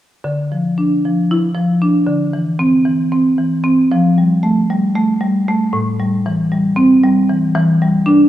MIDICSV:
0, 0, Header, 1, 2, 480
1, 0, Start_track
1, 0, Key_signature, -1, "minor"
1, 0, Tempo, 521739
1, 222, Time_signature, 7, 3, 24, 8
1, 7625, End_track
2, 0, Start_track
2, 0, Title_t, "Marimba"
2, 0, Program_c, 0, 12
2, 223, Note_on_c, 0, 50, 47
2, 476, Note_on_c, 0, 53, 33
2, 716, Note_on_c, 0, 62, 33
2, 862, Note_off_c, 0, 53, 0
2, 965, Note_on_c, 0, 53, 35
2, 1100, Note_off_c, 0, 62, 0
2, 1206, Note_on_c, 0, 64, 51
2, 1345, Note_off_c, 0, 53, 0
2, 1424, Note_on_c, 0, 53, 39
2, 1586, Note_off_c, 0, 64, 0
2, 1672, Note_on_c, 0, 62, 36
2, 1814, Note_off_c, 0, 53, 0
2, 1880, Note_off_c, 0, 50, 0
2, 1901, Note_on_c, 0, 50, 41
2, 1914, Note_off_c, 0, 62, 0
2, 2147, Note_on_c, 0, 52, 34
2, 2385, Note_on_c, 0, 60, 45
2, 2533, Note_off_c, 0, 52, 0
2, 2622, Note_on_c, 0, 52, 34
2, 2773, Note_off_c, 0, 60, 0
2, 2871, Note_on_c, 0, 60, 37
2, 3013, Note_off_c, 0, 52, 0
2, 3109, Note_on_c, 0, 52, 36
2, 3257, Note_off_c, 0, 60, 0
2, 3348, Note_on_c, 0, 60, 42
2, 3496, Note_off_c, 0, 52, 0
2, 3550, Note_off_c, 0, 50, 0
2, 3591, Note_off_c, 0, 60, 0
2, 3602, Note_on_c, 0, 53, 51
2, 3845, Note_on_c, 0, 55, 34
2, 4075, Note_on_c, 0, 57, 52
2, 4224, Note_off_c, 0, 55, 0
2, 4326, Note_on_c, 0, 55, 36
2, 4457, Note_off_c, 0, 57, 0
2, 4559, Note_on_c, 0, 57, 44
2, 4702, Note_off_c, 0, 55, 0
2, 4790, Note_on_c, 0, 55, 40
2, 4941, Note_off_c, 0, 57, 0
2, 5043, Note_on_c, 0, 57, 43
2, 5177, Note_off_c, 0, 55, 0
2, 5241, Note_off_c, 0, 53, 0
2, 5271, Note_on_c, 0, 45, 50
2, 5279, Note_off_c, 0, 57, 0
2, 5515, Note_on_c, 0, 55, 39
2, 5759, Note_on_c, 0, 52, 40
2, 5897, Note_off_c, 0, 55, 0
2, 5996, Note_on_c, 0, 55, 36
2, 6137, Note_off_c, 0, 52, 0
2, 6221, Note_on_c, 0, 60, 53
2, 6373, Note_off_c, 0, 55, 0
2, 6472, Note_on_c, 0, 55, 46
2, 6606, Note_off_c, 0, 60, 0
2, 6710, Note_on_c, 0, 52, 40
2, 6851, Note_off_c, 0, 55, 0
2, 6904, Note_off_c, 0, 45, 0
2, 6935, Note_off_c, 0, 52, 0
2, 6946, Note_on_c, 0, 52, 61
2, 7193, Note_on_c, 0, 55, 44
2, 7415, Note_on_c, 0, 62, 54
2, 7567, Note_off_c, 0, 55, 0
2, 7625, Note_off_c, 0, 52, 0
2, 7625, Note_off_c, 0, 62, 0
2, 7625, End_track
0, 0, End_of_file